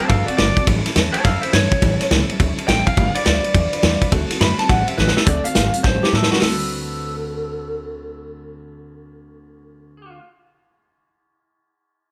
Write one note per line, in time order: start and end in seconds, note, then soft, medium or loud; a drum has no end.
0.01 0.09 C4 soft
0.01 0.10 F#4 soft
0.08 0.26 G2 loud
0.08 0.28 A3 medium
0.08 0.28 C4 medium
0.08 0.28 F#4 medium
0.08 0.26 A4 medium
0.08 0.26 F5 loud
0.08 kick loud
0.08 ride medium
0.12 0.27 A4 medium
0.26 0.37 F#4 medium
0.26 0.39 F#4 soft
0.26 0.38 A4 medium
0.26 0.36 D5 loud
0.26 muted upright bass stroke medium
0.26 ride medium
0.30 0.39 C4 soft
0.37 0.55 G1 medium
0.37 0.57 D3 medium
0.37 0.57 A3 medium
0.37 0.57 C4 medium
0.37 0.57 F#4 medium
0.37 0.55 A4 loud
0.37 0.66 D5 loud
0.37 snare loud
0.37 ride medium
0.56 0.68 C4 soft
0.56 0.68 F#4 medium
0.56 0.67 A4 medium
0.56 kick medium
0.56 ride medium
0.67 0.83 A1 loud
0.67 0.85 A2 medium
0.67 0.86 E3 medium
0.67 0.86 G3 medium
0.67 0.86 C#4 medium
0.67 0.85 E4 medium
0.67 0.84 A4 medium
0.67 kick loud
0.67 ride loud
0.85 0.95 G3 medium
0.85 0.95 C#4 medium
0.85 0.95 E4 medium
0.85 0.96 A4 medium
0.85 snare soft
0.85 ride medium
0.95 1.12 E2 loud
0.95 1.14 A2 medium
0.95 1.14 E3 medium
0.95 1.14 G3 loud
0.95 1.15 C#4 medium
0.95 1.14 E4 loud
0.95 1.13 A4 loud
0.95 snare loud
0.95 ride medium
1.13 1.24 G3 soft
1.13 1.25 C#4 soft
1.13 1.25 E4 soft
1.13 1.24 A4 medium
1.13 1.24 C#5 medium
1.13 1.24 A5 loud
1.13 muted upright bass stroke medium
1.13 ride medium
1.24 1.41 F#2 loud
1.24 1.43 G3 medium
1.24 1.44 C#4 medium
1.24 1.43 E4 medium
1.24 1.41 A4 medium
1.24 1.42 A4 medium
1.24 1.41 F5 loud
1.24 kick loud
1.24 snare soft
1.24 ride medium
1.41 1.52 E4 medium
1.41 1.54 E4 medium
1.41 1.53 A4 medium
1.41 1.52 C5 medium
1.41 muted upright bass stroke medium
1.41 ride medium
1.45 1.53 G3 soft
1.45 1.54 C#4 medium
1.53 1.69 G2 medium
1.53 1.72 A2 medium
1.53 1.72 E3 medium
1.53 1.72 G3 medium
1.53 1.72 C#4 medium
1.53 1.72 E4 loud
1.53 1.71 A4 loud
1.53 2.09 C#5 loud
1.53 snare loud
1.53 ride medium
1.72 1.82 G3 soft
1.72 1.82 C#4 soft
1.72 1.82 E4 medium
1.72 1.82 A4 medium
1.72 kick medium
1.72 ride medium
1.82 1.98 A1 loud
1.82 2.00 A2 medium
1.82 2.01 E3 medium
1.82 2.01 G3 medium
1.82 2.01 C#4 medium
1.82 2.00 E4 medium
1.82 1.99 A4 medium
1.82 kick loud
1.82 ride medium
2.00 2.11 G3 medium
2.00 2.11 C#4 medium
2.00 2.11 E4 medium
2.00 2.11 A4 medium
2.00 snare soft
2.00 ride medium
2.11 2.27 C#2 medium
2.11 2.29 A2 medium
2.11 2.29 E3 medium
2.11 2.30 G3 medium
2.11 2.30 C#4 medium
2.11 2.29 E4 loud
2.11 2.28 A4 loud
2.11 snare loud
2.11 ride medium
2.29 2.38 G3 soft
2.29 2.39 C#4 medium
2.29 2.40 E4 medium
2.29 2.40 A4 medium
2.29 muted upright bass stroke medium
2.29 ride medium
2.39 2.56 D2 loud
2.39 2.58 G3 medium
2.39 2.58 C#4 medium
2.39 2.58 E4 medium
2.39 2.57 A4 medium
2.39 kick loud
2.39 ride medium
2.58 2.67 G3 soft
2.58 2.68 C#4 medium
2.58 2.68 E4 medium
2.58 2.68 A4 medium
2.58 muted upright bass stroke medium
2.58 ride medium
2.67 2.84 A1 loud
2.67 2.86 A2 medium
2.67 2.87 E3 medium
2.67 2.87 G3 medium
2.67 2.87 C#4 medium
2.67 2.86 E4 loud
2.67 2.85 A4 loud
2.67 2.86 G5 loud
2.67 snare loud
2.67 ride medium
2.86 2.95 G3 soft
2.86 2.97 C#4 medium
2.86 2.97 E4 medium
2.86 2.97 A4 medium
2.86 3.14 F5 loud
2.86 kick medium
2.86 ride medium
2.97 3.13 G1 loud
2.97 3.15 G3 medium
2.97 3.15 D4 medium
2.97 3.15 F4 medium
2.97 3.14 B4 medium
2.97 kick loud
2.97 ride medium
3.15 3.24 D4 soft
3.15 3.25 F4 medium
3.15 3.25 B4 medium
3.15 3.24 D5 medium
3.15 muted upright bass stroke medium
3.15 ride medium
3.25 3.42 D2 loud
3.25 3.44 G3 medium
3.25 3.44 D4 medium
3.25 3.43 F4 medium
3.25 3.42 B4 medium
3.25 4.09 D5 loud
3.25 snare loud
3.25 ride medium
3.43 3.54 D4 soft
3.43 3.55 F4 soft
3.43 3.54 B4 medium
3.43 ride medium
3.54 3.71 E2 loud
3.54 3.73 G3 medium
3.54 3.73 D4 medium
3.54 3.73 F4 medium
3.54 3.71 B4 medium
3.54 kick loud
3.54 ride medium
3.73 3.82 D4 medium
3.73 3.82 F4 medium
3.73 3.83 B4 medium
3.73 ride medium
3.82 3.99 E2 medium
3.82 4.01 G3 loud
3.82 4.02 D4 loud
3.82 4.01 F4 loud
3.82 4.00 B4 medium
3.82 snare loud
3.82 ride medium
4.01 4.12 D4 medium
4.01 4.12 F4 medium
4.01 4.12 B4 medium
4.01 kick medium
4.01 ride medium
4.11 4.28 D2 loud
4.11 4.30 D3 medium
4.11 4.30 A3 medium
4.11 4.30 C4 medium
4.11 4.30 F#4 medium
4.11 4.29 A4 medium
4.11 kick loud
4.11 ride medium
4.30 4.40 C4 medium
4.30 4.41 F#4 medium
4.30 4.40 A4 medium
4.30 muted upright bass stroke medium
4.30 snare soft
4.30 ride medium
4.40 4.56 F#2 loud
4.40 4.59 D3 medium
4.40 4.59 A3 medium
4.40 4.59 C4 medium
4.40 4.58 F#4 medium
4.40 4.57 A4 medium
4.40 4.59 B5 loud
4.40 snare loud
4.40 ride medium
4.58 4.69 C4 soft
4.58 4.70 F#4 soft
4.58 4.69 A4 soft
4.58 4.69 A5 loud
4.58 muted upright bass stroke medium
4.58 snare soft
4.58 ride medium
4.69 4.85 A1 loud
4.69 4.87 G3 medium
4.69 4.87 C#4 medium
4.69 4.87 G4 medium
4.69 4.85 A4 medium
4.69 4.88 F#5 loud
4.69 kick loud
4.69 snare soft
4.69 ride medium
4.87 4.97 G3 soft
4.87 4.98 C#4 medium
4.87 4.98 G4 soft
4.87 4.97 A4 medium
4.87 4.98 E5 medium
4.87 ride medium
4.98 5.14 A1 medium
4.98 5.16 A2 medium
4.98 5.16 E3 medium
4.98 5.17 G3 medium
4.98 5.16 C#4 medium
4.98 5.16 G4 loud
4.98 5.15 A4 medium
4.98 5.15 B4 loud
4.98 snare medium
5.08 snare medium
5.16 5.26 G3 soft
5.16 5.27 C#4 soft
5.16 5.27 G4 soft
5.16 5.26 A4 medium
5.16 5.26 A4 loud
5.16 muted upright bass stroke medium
5.16 snare loud
5.26 5.42 D2 loud
5.26 5.45 D3 medium
5.26 5.45 A3 medium
5.26 5.45 C4 medium
5.26 5.44 F#4 medium
5.26 5.43 A4 medium
5.26 5.44 D5 medium
5.26 kick loud
5.26 closed hi-hat medium
5.44 5.54 C4 soft
5.44 5.55 F#4 soft
5.44 5.55 A4 medium
5.44 5.83 F5 medium
5.44 closed hi-hat medium
5.55 5.71 G#1 medium
5.55 5.73 A3 medium
5.55 5.74 C4 medium
5.55 5.74 F#4 medium
5.55 5.72 A4 medium
5.55 snare loud
5.55 closed hi-hat medium
5.73 5.84 C4 soft
5.73 5.85 F#4 medium
5.73 5.84 A4 medium
5.73 muted upright bass stroke medium
5.73 closed hi-hat medium
5.83 6.00 A1 loud
5.83 6.02 A2 medium
5.83 6.02 E3 medium
5.83 6.03 G3 medium
5.83 6.02 C#4 medium
5.83 6.01 G4 medium
5.83 6.00 A4 medium
5.83 6.01 C5 medium
5.83 kick loud
5.83 snare medium
6.02 6.11 G3 soft
6.02 6.12 C#4 soft
6.02 6.13 G4 medium
6.02 6.14 G4 medium
6.02 6.12 A4 medium
6.02 muted upright bass stroke medium
6.02 snare medium
6.12 6.28 A2 medium
6.12 6.31 G3 medium
6.12 6.31 C#4 medium
6.12 6.30 G4 medium
6.12 6.31 A4 medium
6.12 6.29 A4 medium
6.12 snare medium
6.23 snare loud
6.30 6.41 G3 soft
6.30 6.42 C#4 medium
6.30 6.41 F#4 medium
6.30 6.42 G4 medium
6.30 6.41 A4 soft
6.30 muted upright bass stroke medium
6.30 snare medium
6.36 10.19 D3 medium
6.41 10.18 D2 loud
6.41 10.22 A3 medium
6.41 10.23 C4 medium
6.41 10.18 A4 loud
6.41 snare loud
6.41 open hi-hat loud
6.49 10.25 F#4 medium
6.49 10.27 B4 medium